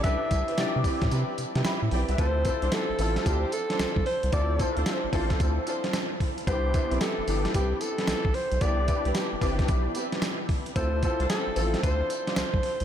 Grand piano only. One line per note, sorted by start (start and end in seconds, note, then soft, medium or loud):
0.04 0.44 D4 medium
0.04 0.44 E4 medium
0.04 0.44 G4 medium
0.04 0.44 B4 medium
0.57 1.33 D4 medium
0.57 1.34 E4 medium
0.57 1.34 G4 medium
0.57 1.34 D5 medium
1.65 1.91 E5 medium
1.65 1.91 B5 medium
1.92 2.09 D5 medium
1.92 2.08 G5 medium
2.09 2.35 B4 medium
2.09 2.35 E5 medium
2.18 2.39 C4 medium
2.18 2.39 E4 medium
2.18 2.40 F4 medium
2.18 2.40 A4 medium
2.45 2.85 C4 medium
2.45 2.85 E4 medium
2.45 2.85 F4 medium
2.45 2.86 A4 medium
2.99 3.75 C4 medium
2.99 3.75 E4 medium
2.99 3.75 F4 medium
2.99 3.75 A4 medium
4.32 4.53 C4 medium
4.32 4.54 E4 medium
4.32 4.54 F4 medium
4.32 4.54 A4 medium
4.59 4.99 C4 medium
4.59 4.99 E4 medium
4.59 5.00 F4 medium
4.59 5.00 A4 medium
5.12 5.88 C4 medium
5.12 5.89 E4 medium
5.12 5.89 F4 medium
5.12 5.89 A4 loud
6.47 6.68 B3 medium
6.47 6.68 D4 medium
6.47 6.68 E4 medium
6.47 6.68 G4 medium
6.73 7.13 B3 medium
6.73 7.14 D4 medium
6.73 7.14 E4 medium
6.73 7.14 G4 medium
7.27 8.03 B3 medium
7.27 8.03 D4 medium
7.27 8.03 E4 medium
7.27 8.03 G4 medium
8.61 8.82 B3 medium
8.61 8.82 D4 medium
8.61 8.82 E4 medium
8.61 8.83 G4 medium
8.87 9.28 B3 medium
8.87 9.28 D4 medium
8.87 9.28 E4 medium
8.87 9.28 G4 medium
9.41 10.17 B3 medium
9.41 10.17 D4 medium
9.41 10.18 E4 medium
9.41 10.18 G4 medium
10.76 10.96 C4 medium
10.76 10.97 E4 medium
10.76 10.97 F4 medium
10.76 10.97 A4 medium
11.02 11.42 C4 medium
11.02 11.42 E4 medium
11.02 11.43 F4 medium
11.02 11.43 A4 medium
11.56 12.32 C4 medium
11.56 12.32 E4 medium
11.56 12.32 F4 medium
11.56 12.32 A4 medium